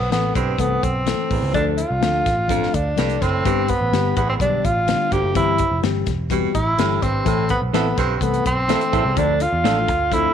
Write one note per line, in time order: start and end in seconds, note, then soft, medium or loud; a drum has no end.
0.00 0.10 B1 medium
0.00 0.12 B3 medium
0.10 0.31 A1 medium
0.10 0.37 E3 medium
0.10 0.37 A3 medium
0.10 0.34 B3 medium
0.10 0.38 C4 medium
0.10 0.38 A4 medium
0.10 snare loud
0.10 closed hi-hat medium
0.35 0.55 B1 medium
0.35 0.55 G2 medium
0.35 0.62 C4 medium
0.35 kick medium
0.35 closed hi-hat medium
0.58 0.78 C2 medium
0.58 0.85 E3 medium
0.58 0.85 A3 medium
0.58 0.85 B3 medium
0.58 0.85 C4 medium
0.58 0.86 A4 medium
0.58 kick medium
0.58 closed hi-hat medium
0.83 1.12 B1 medium
0.83 1.54 C4 medium
0.83 kick medium
0.83 closed hi-hat medium
1.06 1.33 E3 medium
1.06 1.33 A3 medium
1.06 1.33 C4 medium
1.06 1.33 A4 medium
1.06 snare loud
1.06 closed hi-hat loud
1.31 1.40 A1 medium
1.31 1.50 E2 medium
1.31 kick medium
1.31 open hi-hat soft
1.43 1.52 C#2 medium
1.54 1.83 D2 loud
1.54 1.74 D2 medium
1.54 1.80 F3 loud
1.54 1.80 A3 medium
1.54 1.65 D4 medium
1.54 1.81 D4 medium
1.54 1.81 A4 loud
1.54 kick loud
1.54 closed hi-hat medium
1.78 2.76 F4 loud
1.78 closed hi-hat medium
1.91 2.00 C2 medium
2.01 2.21 D2 medium
2.01 2.28 F3 medium
2.01 2.28 A3 medium
2.01 2.28 D4 medium
2.01 2.28 A4 medium
2.01 snare loud
2.01 closed hi-hat medium
2.26 2.64 A1 medium
2.26 kick medium
2.26 snare soft
2.26 closed hi-hat medium
2.48 2.69 F2 medium
2.48 2.75 F3 medium
2.48 2.75 A3 medium
2.48 2.76 D4 medium
2.48 2.76 A4 medium
2.48 kick medium
2.48 closed hi-hat medium
2.63 snare soft
2.74 2.93 D2 medium
2.74 3.23 D4 medium
2.74 kick medium
2.74 closed hi-hat medium
2.96 3.17 C2 medium
2.96 3.17 G2 medium
2.96 3.23 F3 medium
2.96 3.23 A3 medium
2.96 3.24 D4 medium
2.96 3.24 A4 medium
2.96 snare loud
2.96 closed hi-hat medium
3.09 closed hi-hat medium
3.22 3.41 F#1 medium
3.22 3.41 A2 medium
3.22 3.71 C4 medium
3.22 kick medium
3.22 snare soft
3.22 closed hi-hat medium
3.44 3.74 G1 loud
3.44 3.64 G2 medium
3.44 3.71 D3 medium
3.44 3.71 G3 medium
3.44 3.71 B3 medium
3.44 3.72 G4 loud
3.44 kick loud
3.44 closed hi-hat medium
3.68 4.17 B3 medium
3.68 kick medium
3.68 closed hi-hat medium
3.81 3.90 A1 medium
3.92 4.12 G1 medium
3.92 4.18 D3 medium
3.92 4.18 G3 medium
3.92 4.19 B3 medium
3.92 4.19 G4 medium
3.92 snare loud
3.92 closed hi-hat medium
4.16 4.36 A1 medium
4.16 4.36 E2 medium
4.16 4.28 B3 medium
4.16 kick loud
4.16 closed hi-hat medium
4.30 4.35 C4 medium
4.40 4.59 B1 medium
4.40 4.66 D3 medium
4.40 4.67 G3 medium
4.40 4.67 B3 medium
4.40 4.67 D4 loud
4.40 4.67 G4 medium
4.40 kick medium
4.40 closed hi-hat medium
4.65 4.93 A1 medium
4.65 5.14 F4 loud
4.65 kick medium
4.65 closed hi-hat medium
4.87 5.14 D3 medium
4.87 5.14 G3 medium
4.87 5.14 B3 medium
4.87 5.14 D4 medium
4.87 snare loud
4.87 closed hi-hat medium
5.12 5.21 G1 medium
5.12 5.31 D2 medium
5.12 5.36 G4 loud
5.12 kick medium
5.12 closed hi-hat medium
5.24 5.33 F#1 medium
5.34 5.64 G1 loud
5.34 5.55 C3 medium
5.34 5.61 E3 loud
5.34 5.61 G3 medium
5.34 5.62 C4 medium
5.34 5.80 E4 loud
5.34 5.62 G4 loud
5.34 kick loud
5.34 closed hi-hat medium
5.58 kick medium
5.58 closed hi-hat medium
5.71 5.81 F1 medium
5.82 6.02 G1 medium
5.82 6.09 E3 medium
5.82 6.09 G3 medium
5.82 6.09 C4 medium
5.82 6.10 G4 medium
5.82 snare loud
5.82 closed hi-hat medium
6.06 6.45 E1 medium
6.06 kick medium
6.06 snare soft
6.06 closed hi-hat medium
6.30 6.50 B2 medium
6.30 6.56 E3 medium
6.30 6.57 G3 medium
6.30 6.57 C4 medium
6.30 6.57 G4 medium
6.30 kick medium
6.30 closed hi-hat medium
6.55 6.74 A1 medium
6.55 7.04 E4 loud
6.55 kick medium
6.55 closed hi-hat medium
6.78 6.98 G1 medium
6.78 6.98 A2 medium
6.78 7.04 E3 medium
6.78 7.05 G3 medium
6.78 7.05 C4 medium
6.78 7.05 G4 medium
6.78 snare loud
6.78 closed hi-hat loud
7.02 7.22 G#1 medium
7.02 7.22 G2 medium
7.02 7.50 C4 medium
7.02 kick medium
7.02 closed hi-hat medium
7.25 7.55 A1 loud
7.25 7.46 A2 medium
7.25 7.52 E3 medium
7.25 7.52 A3 medium
7.25 7.52 C4 medium
7.25 7.52 A4 loud
7.25 kick loud
7.25 closed hi-hat medium
7.49 7.61 B3 medium
7.49 kick medium
7.49 closed hi-hat medium
7.62 7.71 B1 medium
7.73 7.93 A1 medium
7.73 8.00 E3 medium
7.73 8.00 A3 medium
7.73 7.97 B3 medium
7.73 7.86 C4 medium
7.73 8.00 C4 medium
7.73 7.86 E4 medium
7.73 7.86 A4 medium
7.73 8.01 A4 medium
7.73 snare loud
7.73 closed hi-hat medium
7.97 8.17 B1 medium
7.97 8.17 G2 medium
7.97 8.15 C4 medium
7.97 kick medium
7.97 snare soft
7.97 closed hi-hat medium
8.16 8.24 C4 medium
8.21 8.40 C2 medium
8.21 8.47 E3 medium
8.21 8.48 A3 medium
8.21 8.46 B3 medium
8.21 8.48 C4 medium
8.21 8.48 A4 medium
8.21 kick medium
8.21 closed hi-hat medium
8.34 closed hi-hat soft
8.46 8.74 B1 medium
8.46 9.20 C4 loud
8.46 kick medium
8.46 closed hi-hat medium
8.69 8.95 E3 medium
8.69 8.95 A3 medium
8.69 8.81 C4 medium
8.69 8.96 C4 medium
8.69 8.82 E4 medium
8.69 8.82 A4 medium
8.69 8.96 A4 medium
8.69 snare loud
8.69 closed hi-hat loud
8.81 closed hi-hat medium
8.92 9.03 A1 medium
8.92 9.12 E2 medium
8.92 9.02 C4 medium
8.92 9.03 E4 medium
8.92 9.03 A4 medium
8.92 kick medium
8.92 closed hi-hat medium
9.05 9.15 C2 medium
9.16 9.45 D2 loud
9.16 9.36 D2 medium
9.16 9.43 F3 medium
9.16 9.43 A3 medium
9.16 9.43 D4 medium
9.16 9.44 D4 medium
9.16 9.43 A4 loud
9.16 kick loud
9.16 closed hi-hat medium
9.40 10.15 F4 medium
9.40 closed hi-hat medium
9.53 9.62 E2 medium
9.63 9.89 A1 medium
9.63 9.90 F3 medium
9.63 9.90 A3 medium
9.63 9.77 D4 medium
9.63 9.90 D4 medium
9.63 9.77 F4 medium
9.63 9.91 A4 medium
9.63 9.77 A4 medium
9.63 snare loud
9.63 closed hi-hat medium
9.88 10.27 D2 medium
9.88 kick loud
9.88 closed hi-hat medium
10.11 10.31 F2 medium
10.11 10.34 F3 medium
10.11 10.34 A3 medium
10.11 10.34 D4 medium
10.11 10.34 E4 loud
10.11 10.34 A4 medium
10.11 kick medium
10.11 closed hi-hat medium